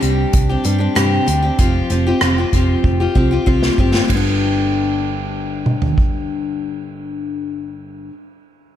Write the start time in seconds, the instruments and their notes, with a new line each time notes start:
0.01 picked electric bass C2, steel-string acoustic guitar G3 C4 D4 G4, closed hi-hat
0.33 picked electric bass C2, kick, closed hi-hat
0.49 steel-string acoustic guitar C4 D4 G4
0.64 picked electric bass G2, steel-string acoustic guitar G3 C4 D4 G4, closed hi-hat
0.78 steel-string acoustic guitar C4 D4 G4
0.95 picked electric bass G2, steel-string acoustic guitar C3 G3 C4 D4 G4, cross-stick, closed hi-hat
1.27 picked electric bass D2, steel-string acoustic guitar G3 C4 D4 G4, closed hi-hat
1.42 steel-string acoustic guitar C4 D4 G4
1.59 picked electric bass F1, steel-string acoustic guitar F3 C4 F4 G4, kick, closed hi-hat
1.90 picked electric bass F1, steel-string acoustic guitar F3 C4 F4 G4, closed hi-hat
2.06 steel-string acoustic guitar C4 F4 G4
2.21 picked electric bass F1, steel-string acoustic guitar F3 C4 F4 G4, cross-stick, closed hi-hat
2.38 steel-string acoustic guitar C4 F4 G4
2.53 picked electric bass F1, steel-string acoustic guitar F3 C4 F4 G4, kick, closed hi-hat
2.84 picked electric bass F1, kick
3.00 steel-string acoustic guitar C4 F4 G4
3.15 picked electric bass C2, steel-string acoustic guitar F3 C4 F4 G4, kick
3.31 steel-string acoustic guitar C4 F4 G4
3.46 picked electric bass C2, steel-string acoustic guitar F3 C4 F4 G4, kick
3.63 snare
3.78 picked electric bass G1, steel-string acoustic guitar F3 C4 F4 G4, kick
3.94 steel-string acoustic guitar C4 F4 G4, snare
4.05 steel-string acoustic guitar G2 D3
4.09 picked electric bass G1, steel-string acoustic guitar G3 B3, kick, ride
4.15 steel-string acoustic guitar D4 G4
5.66 mid tom
5.82 floor tom
5.98 kick